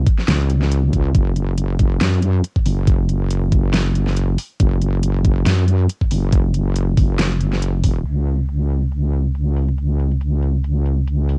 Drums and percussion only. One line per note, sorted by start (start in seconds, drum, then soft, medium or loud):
0.07 kick loud
0.07 closed hi-hat soft
0.19 snare soft
0.28 snare loud
0.28 closed hi-hat medium
0.50 closed hi-hat soft
0.62 snare soft
0.72 closed hi-hat medium
0.93 kick medium
0.93 closed hi-hat medium
1.15 kick loud
1.15 closed hi-hat medium
1.36 closed hi-hat soft
1.58 closed hi-hat medium
1.79 kick loud
1.79 closed hi-hat medium
2.01 snare loud
2.01 closed hi-hat medium
2.22 closed hi-hat soft
2.44 closed hi-hat medium
2.56 kick medium
2.66 open hi-hat medium
2.87 kick loud
2.87 closed hi-hat medium
3.09 closed hi-hat soft
3.31 closed hi-hat medium
3.52 kick loud
3.52 closed hi-hat soft
3.74 snare loud
3.74 closed hi-hat medium
3.95 closed hi-hat soft
4.07 snare soft
4.17 closed hi-hat medium
4.38 open hi-hat medium
4.60 kick loud
4.60 closed hi-hat medium
4.82 closed hi-hat medium
5.03 closed hi-hat medium
5.25 kick medium
5.25 closed hi-hat soft
5.46 snare loud
5.46 closed hi-hat medium
5.68 closed hi-hat soft
5.89 closed hi-hat medium
6.01 kick medium
6.11 open hi-hat medium
6.33 kick loud
6.33 closed hi-hat medium
6.54 closed hi-hat medium
6.76 closed hi-hat medium
6.97 kick loud
6.97 open hi-hat medium
7.19 snare loud
7.19 closed hi-hat medium
7.40 closed hi-hat soft
7.53 snare soft
7.62 closed hi-hat medium
7.84 kick medium
7.84 open hi-hat loud
8.05 closed hi-hat medium
8.05 crash medium
8.27 closed hi-hat soft
8.39 closed hi-hat soft
8.49 closed hi-hat medium
8.70 closed hi-hat soft
8.92 closed hi-hat medium
9.13 closed hi-hat soft
9.35 closed hi-hat medium
9.56 open hi-hat medium
9.68 closed hi-hat medium
9.78 closed hi-hat medium
10.00 closed hi-hat soft
10.11 closed hi-hat soft
10.21 closed hi-hat medium
10.43 closed hi-hat medium
10.64 closed hi-hat medium
10.86 closed hi-hat soft
11.07 closed hi-hat medium
11.29 open hi-hat medium